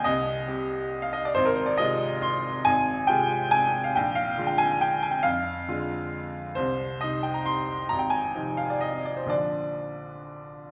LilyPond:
<<
  \new Staff \with { instrumentName = "Grand piano" } { \time 3/4 \key bes \mixolydian \tempo 4 = 136 ees''2~ ees''16 f''16 ees''16 d''16 | c''16 bes'16 c''16 d''16 ees''4 c'''4 | aes''4 g''4 aes''8. f''16 | g''8 f''8. g''16 aes''8 g''8 aes''16 g''16 |
f''2. | c''4 ees''8 g''16 bes''16 c'''4 | bes''16 g''16 aes''4 f''16 d''16 ees''8 d''16 c''16 | d''2. | }
  \new Staff \with { instrumentName = "Grand piano" } { \clef bass \time 3/4 \key bes \mixolydian c,4 <c g g'>2 | aes,,4 <c aes f'>2 | aes,,4 <c aes f'>2 | bes,,4 <d aes f'>2 |
f,4 <d aes f'>2 | c,4 <c g ees'>2 | aes,,4 <c f ees'>2 | <bes,, d f d'>2. | }
>>